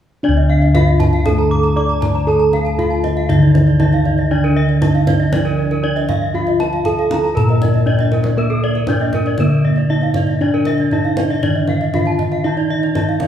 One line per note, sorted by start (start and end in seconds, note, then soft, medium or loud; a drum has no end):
0.23 1.26 D3 soft
0.23 1.72 D4 medium
0.23 0.75 D4 soft
0.23 0.37 D5 soft
0.28 3.27 D2 medium
0.37 0.50 D#5 soft
0.50 0.62 F5 soft
0.62 0.75 D#5 soft
0.62 kendang slap soft
0.75 1.26 F4 soft
0.75 0.88 F5 soft
0.75 kendang high soft
0.75 kendang low soft
0.87 1.00 D#5 soft
0.87 kendang slap soft
1.00 1.13 A5 soft
1.00 kendang high soft
1.00 kendang low soft
1.13 1.26 F5 soft
1.13 kendang slap soft
1.25 2.25 A3 soft
1.25 1.77 A4 soft
1.25 1.38 A5 soft
1.25 kendang high soft
1.25 kendang low soft
1.38 1.51 A#5 soft
1.38 kendang slap soft
1.51 1.64 D6 soft
1.63 1.76 A#5 soft
1.63 kendang slap soft
1.76 1.85 D#4 soft
1.76 2.27 D5 soft
1.76 1.90 D6 soft
1.89 2.02 A#5 soft
2.01 2.14 A5 soft
2.01 kendang high soft
2.01 kendang low soft
2.15 2.28 A#5 soft
2.15 kendang slap soft
2.26 3.29 A3 soft
2.26 3.76 A4 medium
2.26 2.79 A4 soft
2.26 2.41 A5 soft
2.39 2.53 A#5 soft
2.53 2.66 F5 soft
2.53 kendang high soft
2.65 2.78 A5 soft
2.65 kendang slap soft
2.78 2.86 D#4 soft
2.78 3.30 F4 soft
2.78 2.91 F5 soft
2.78 kendang low soft
2.90 3.04 A5 soft
2.90 kendang slap soft
3.04 3.17 D#5 soft
3.04 kendang high soft
3.17 3.29 F5 soft
3.17 kendang slap soft
3.29 4.78 D3 medium
3.29 4.31 D#3 soft
3.29 3.78 D#4 soft
3.29 3.42 D#5 soft
3.29 kendang low soft
3.42 3.55 D5 soft
3.42 kendang slap soft
3.55 3.67 D#5 soft
3.55 kendang high soft
3.67 3.80 D5 soft
3.67 kendang slap soft
3.80 4.31 D#4 soft
3.80 3.88 D#4 soft
3.80 3.93 D#5 soft
3.80 kendang high soft
3.80 kendang low soft
3.93 4.06 F5 soft
3.93 kendang slap soft
4.05 4.18 D5 soft
4.05 kendang low soft
4.18 4.31 D#5 soft
4.18 kendang slap soft
4.31 5.32 D3 soft
4.31 4.82 D4 soft
4.31 5.80 D4 medium
4.31 4.44 D5 soft
4.44 4.57 A#4 soft
4.56 4.69 D#5 soft
4.69 4.82 D5 soft
4.69 kendang slap soft
4.82 5.33 D#4 soft
4.82 4.95 D#5 soft
4.82 kendang high soft
4.82 kendang low soft
4.95 5.08 F5 soft
4.95 kendang slap soft
5.07 5.20 D5 soft
5.07 kendang high soft
5.07 kendang low soft
5.19 5.33 D#5 soft
5.19 kendang slap soft
5.32 6.35 D3 soft
5.32 6.81 F3 soft
5.32 5.82 D4 soft
5.32 5.46 D5 soft
5.32 kendang high soft
5.32 kendang low soft
5.45 5.58 A#4 soft
5.45 kendang slap soft
5.59 5.71 D5 soft
5.71 5.84 A#4 soft
5.71 kendang slap soft
5.83 6.34 D4 soft
5.83 5.91 D#4 soft
5.83 5.96 D5 soft
5.96 6.09 D#5 soft
5.96 kendang slap soft
6.09 6.22 F5 soft
6.09 kendang high soft
6.09 kendang low soft
6.22 6.35 D#5 soft
6.34 7.36 F3 soft
6.34 7.83 F4 medium
6.34 6.86 F4 soft
6.34 6.47 F5 soft
6.47 6.60 D#5 soft
6.47 kendang slap soft
6.60 6.73 A5 soft
6.60 kendang high soft
6.73 6.86 F5 soft
6.73 kendang slap soft
6.85 6.93 D#4 soft
6.85 7.36 A4 soft
6.85 6.98 A5 soft
6.85 kendang low soft
6.99 7.11 F5 soft
6.99 kendang slap soft
7.11 7.24 A#5 soft
7.11 kendang high soft
7.24 7.37 A5 soft
7.24 kendang slap soft
7.35 8.85 A#2 soft
7.35 8.38 A#3 soft
7.35 7.87 A#4 soft
7.35 7.49 A#5 soft
7.35 kendang low soft
7.49 7.62 D#5 soft
7.49 kendang slap soft
7.62 7.75 D5 soft
7.62 kendang high soft
7.74 7.87 D#5 soft
7.74 kendang slap soft
7.86 8.37 D4 soft
7.86 7.94 D#4 soft
7.86 8.00 D5 soft
7.86 kendang low soft
7.99 8.13 D#5 soft
7.99 kendang low soft
8.12 8.25 A#4 soft
8.12 kendang high soft
8.24 8.38 D5 soft
8.24 kendang high soft
8.37 8.88 A#3 soft
8.37 9.39 A#3 soft
8.37 9.86 A#4 medium
8.37 8.51 A#4 soft
8.50 8.63 A4 soft
8.64 8.76 D5 soft
8.75 8.89 A#4 soft
8.75 kendang slap soft
8.87 9.39 D4 soft
8.87 8.96 D#4 soft
8.87 9.02 D5 soft
8.87 kendang high soft
8.87 kendang low soft
9.00 9.14 D#5 soft
9.00 kendang slap soft
9.13 9.27 A#4 soft
9.13 kendang high soft
9.13 kendang low soft
9.26 9.40 D5 soft
9.26 kendang slap soft
9.38 10.87 D3 soft
9.38 10.41 A#3 soft
9.38 9.91 A#3 soft
9.38 9.52 A#4 soft
9.38 kendang high soft
9.38 kendang low soft
9.50 9.65 D5 soft
9.50 kendang slap soft
9.65 9.78 D#5 soft
9.76 9.90 D5 soft
9.76 kendang slap soft
9.90 9.98 D#4 soft
9.90 10.41 D#4 soft
9.90 10.03 D#5 soft
10.01 10.16 F5 soft
10.01 kendang slap soft
10.14 10.29 D5 soft
10.14 kendang high soft
10.14 kendang low soft
10.27 10.41 D#5 soft
10.27 kendang slap soft
10.41 11.41 D3 soft
10.41 11.90 D4 medium
10.41 10.92 D4 soft
10.41 10.54 D5 soft
10.54 10.67 A#4 soft
10.65 10.79 D#5 soft
10.65 kendang high soft
10.78 10.92 D5 soft
10.78 kendang slap soft
10.91 11.00 D#4 soft
10.91 11.43 D#4 soft
10.91 11.05 D#5 soft
10.91 kendang low soft
11.04 11.18 F5 soft
11.04 kendang slap soft
11.17 11.30 D5 soft
11.17 kendang high soft
11.30 11.43 D#5 soft
11.30 kendang slap soft
11.42 12.44 D3 soft
11.42 12.91 D#3 soft
11.42 11.94 D4 soft
11.42 11.56 D5 soft
11.42 kendang low soft
11.55 11.68 D#5 soft
11.55 kendang slap soft
11.68 11.81 F5 soft
11.68 kendang high soft
11.81 11.94 D#5 soft
11.81 kendang slap soft
11.94 12.02 D#4 soft
11.94 12.45 F4 soft
11.94 12.07 F5 soft
11.94 kendang high soft
11.94 kendang low soft
12.06 12.19 A5 soft
12.06 kendang slap soft
12.19 12.32 D#5 soft
12.19 kendang low soft
12.32 12.45 F5 soft
12.32 kendang slap soft
12.44 13.27 D#3 soft
12.44 12.94 D#4 medium
12.44 12.96 D#4 soft
12.44 12.57 D#5 soft
12.57 12.70 D5 soft
12.70 12.83 D#5 soft
12.83 12.96 D5 soft
12.83 kendang slap soft
12.95 13.04 D#4 soft
12.95 13.27 D#4 soft
12.95 13.08 D#5 soft
12.95 kendang high soft
12.95 kendang low soft
13.09 13.21 F5 soft
13.09 kendang slap soft
13.20 13.27 D5 soft
13.20 kendang high soft
13.20 kendang low soft